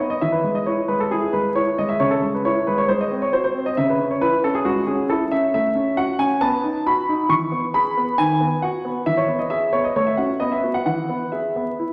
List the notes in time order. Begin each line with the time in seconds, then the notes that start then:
Already playing: C#5
0.00 B3
0.10 D#5
0.21 E3 E5
0.32 B4
0.44 G#3
0.55 D#5
0.66 E4 C#5
0.88 G#3 B4
1.00 A4
1.11 E4 G#4
1.33 G#3 B4
1.55 E4 C#5
1.78 G#3 D#5
1.89 E5
2.00 C#3 C#5
2.11 A4
2.22 G#3
2.34 B4
2.45 E4 C#5
2.67 G#3 B4
2.78 C#5
2.88 G#3 C5
3.01 D#5
3.11 C4
3.22 C#5
3.33 F#4 C5
3.44 C5
3.54 C4
3.66 D#5
3.77 C#3 E5
3.89 B4
4.00 C#4
4.11 C#5
4.21 E4 B4
4.44 C#4 A4
4.55 G#4
4.65 G#3 F#4
4.87 C#4 G#4
5.10 E4 A4
5.31 C#4 E5
5.54 A3 E5
5.75 C#4
5.97 F#4 F#5
6.19 C#4 G#5
6.41 B3 A5
6.63 D#4
6.86 F#4 B5
7.09 D#4
7.29 E3 C#6
7.52 B3
7.74 G#4 B5
7.97 B3
8.18 D#3 G#5
8.40 B3
8.62 F#4 F#5
8.85 B3
9.06 E3 E5
9.17 C#5
9.28 B3
9.39 D#5
9.50 G#4 E5
9.73 B3 C#5
9.84 D#5
9.96 A3 C#5
10.07 E5
10.17 C#4 F#4 F#5
10.40 B3 D#5
10.52 E5
10.63 B3 F#4
10.74 F#5
10.86 E3 F#5
11.09 B3
11.32 G#4 E5
11.56 B3
11.79 E4